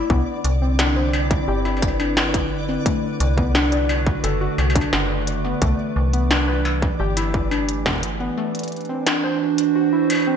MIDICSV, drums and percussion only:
0, 0, Header, 1, 3, 480
1, 0, Start_track
1, 0, Tempo, 689655
1, 70, Time_signature, 4, 2, 24, 8
1, 7215, End_track
2, 0, Start_track
2, 0, Title_t, "Struck metal"
2, 790, Note_on_c, 9, 60, 76
2, 859, Note_off_c, 9, 60, 0
2, 1150, Note_on_c, 9, 60, 35
2, 1219, Note_off_c, 9, 60, 0
2, 1230, Note_on_c, 9, 60, 29
2, 1300, Note_off_c, 9, 60, 0
2, 1310, Note_on_c, 9, 60, 22
2, 1379, Note_off_c, 9, 60, 0
2, 1390, Note_on_c, 9, 60, 59
2, 1459, Note_off_c, 9, 60, 0
2, 2710, Note_on_c, 9, 60, 80
2, 2779, Note_off_c, 9, 60, 0
2, 2950, Note_on_c, 9, 60, 37
2, 3019, Note_off_c, 9, 60, 0
2, 3190, Note_on_c, 9, 60, 74
2, 3259, Note_off_c, 9, 60, 0
2, 3270, Note_on_c, 9, 60, 60
2, 3340, Note_off_c, 9, 60, 0
2, 3350, Note_on_c, 9, 60, 52
2, 3420, Note_off_c, 9, 60, 0
2, 4629, Note_on_c, 9, 60, 81
2, 4699, Note_off_c, 9, 60, 0
2, 4989, Note_on_c, 9, 60, 40
2, 5059, Note_off_c, 9, 60, 0
2, 5230, Note_on_c, 9, 60, 65
2, 5299, Note_off_c, 9, 60, 0
2, 7029, Note_on_c, 9, 60, 76
2, 7046, Note_off_c, 9, 60, 0
2, 7046, Note_on_c, 9, 60, 64
2, 7064, Note_off_c, 9, 60, 0
2, 7064, Note_on_c, 9, 60, 53
2, 7080, Note_off_c, 9, 60, 0
2, 7080, Note_on_c, 9, 60, 43
2, 7097, Note_off_c, 9, 60, 0
2, 7097, Note_on_c, 9, 60, 35
2, 7114, Note_off_c, 9, 60, 0
2, 7114, Note_on_c, 9, 60, 28
2, 7132, Note_off_c, 9, 60, 0
2, 7132, Note_on_c, 9, 60, 24
2, 7201, Note_off_c, 9, 60, 0
2, 7215, End_track
3, 0, Start_track
3, 0, Title_t, "Drums"
3, 69, Note_on_c, 9, 36, 103
3, 139, Note_off_c, 9, 36, 0
3, 309, Note_on_c, 9, 42, 79
3, 379, Note_off_c, 9, 42, 0
3, 549, Note_on_c, 9, 38, 119
3, 549, Note_on_c, 9, 42, 90
3, 619, Note_off_c, 9, 38, 0
3, 619, Note_off_c, 9, 42, 0
3, 909, Note_on_c, 9, 36, 107
3, 910, Note_on_c, 9, 42, 52
3, 979, Note_off_c, 9, 36, 0
3, 979, Note_off_c, 9, 42, 0
3, 1269, Note_on_c, 9, 36, 83
3, 1270, Note_on_c, 9, 42, 75
3, 1339, Note_off_c, 9, 36, 0
3, 1340, Note_off_c, 9, 42, 0
3, 1509, Note_on_c, 9, 38, 121
3, 1579, Note_off_c, 9, 38, 0
3, 1629, Note_on_c, 9, 36, 83
3, 1630, Note_on_c, 9, 42, 86
3, 1699, Note_off_c, 9, 36, 0
3, 1699, Note_off_c, 9, 42, 0
3, 1989, Note_on_c, 9, 36, 105
3, 1990, Note_on_c, 9, 42, 75
3, 2059, Note_off_c, 9, 36, 0
3, 2059, Note_off_c, 9, 42, 0
3, 2230, Note_on_c, 9, 42, 90
3, 2299, Note_off_c, 9, 42, 0
3, 2349, Note_on_c, 9, 36, 81
3, 2419, Note_off_c, 9, 36, 0
3, 2470, Note_on_c, 9, 38, 120
3, 2539, Note_off_c, 9, 38, 0
3, 2590, Note_on_c, 9, 42, 50
3, 2660, Note_off_c, 9, 42, 0
3, 2829, Note_on_c, 9, 36, 103
3, 2899, Note_off_c, 9, 36, 0
3, 2950, Note_on_c, 9, 42, 76
3, 3019, Note_off_c, 9, 42, 0
3, 3310, Note_on_c, 9, 36, 121
3, 3310, Note_on_c, 9, 42, 92
3, 3379, Note_off_c, 9, 36, 0
3, 3380, Note_off_c, 9, 42, 0
3, 3430, Note_on_c, 9, 38, 120
3, 3499, Note_off_c, 9, 38, 0
3, 3670, Note_on_c, 9, 42, 77
3, 3740, Note_off_c, 9, 42, 0
3, 3909, Note_on_c, 9, 36, 102
3, 3909, Note_on_c, 9, 42, 92
3, 3979, Note_off_c, 9, 36, 0
3, 3979, Note_off_c, 9, 42, 0
3, 4269, Note_on_c, 9, 42, 54
3, 4339, Note_off_c, 9, 42, 0
3, 4389, Note_on_c, 9, 38, 117
3, 4459, Note_off_c, 9, 38, 0
3, 4749, Note_on_c, 9, 36, 99
3, 4819, Note_off_c, 9, 36, 0
3, 4989, Note_on_c, 9, 42, 92
3, 5059, Note_off_c, 9, 42, 0
3, 5109, Note_on_c, 9, 36, 77
3, 5179, Note_off_c, 9, 36, 0
3, 5349, Note_on_c, 9, 42, 81
3, 5419, Note_off_c, 9, 42, 0
3, 5469, Note_on_c, 9, 36, 77
3, 5469, Note_on_c, 9, 38, 119
3, 5486, Note_off_c, 9, 36, 0
3, 5486, Note_on_c, 9, 36, 63
3, 5504, Note_off_c, 9, 36, 0
3, 5504, Note_on_c, 9, 36, 52
3, 5521, Note_off_c, 9, 36, 0
3, 5521, Note_on_c, 9, 36, 43
3, 5538, Note_off_c, 9, 36, 0
3, 5538, Note_on_c, 9, 36, 36
3, 5539, Note_off_c, 9, 38, 0
3, 5555, Note_off_c, 9, 36, 0
3, 5555, Note_on_c, 9, 36, 29
3, 5572, Note_off_c, 9, 36, 0
3, 5572, Note_on_c, 9, 36, 23
3, 5589, Note_on_c, 9, 42, 94
3, 5642, Note_off_c, 9, 36, 0
3, 5659, Note_off_c, 9, 42, 0
3, 5949, Note_on_c, 9, 42, 52
3, 5980, Note_off_c, 9, 42, 0
3, 5980, Note_on_c, 9, 42, 42
3, 6009, Note_off_c, 9, 42, 0
3, 6009, Note_on_c, 9, 42, 35
3, 6040, Note_off_c, 9, 42, 0
3, 6040, Note_on_c, 9, 42, 29
3, 6070, Note_off_c, 9, 42, 0
3, 6070, Note_on_c, 9, 42, 23
3, 6100, Note_off_c, 9, 42, 0
3, 6100, Note_on_c, 9, 42, 19
3, 6129, Note_off_c, 9, 42, 0
3, 6129, Note_on_c, 9, 42, 16
3, 6159, Note_off_c, 9, 42, 0
3, 6159, Note_on_c, 9, 42, 13
3, 6229, Note_off_c, 9, 42, 0
3, 6309, Note_on_c, 9, 38, 115
3, 6309, Note_on_c, 9, 42, 82
3, 6379, Note_off_c, 9, 38, 0
3, 6379, Note_off_c, 9, 42, 0
3, 6669, Note_on_c, 9, 42, 93
3, 6739, Note_off_c, 9, 42, 0
3, 7029, Note_on_c, 9, 42, 80
3, 7099, Note_off_c, 9, 42, 0
3, 7215, End_track
0, 0, End_of_file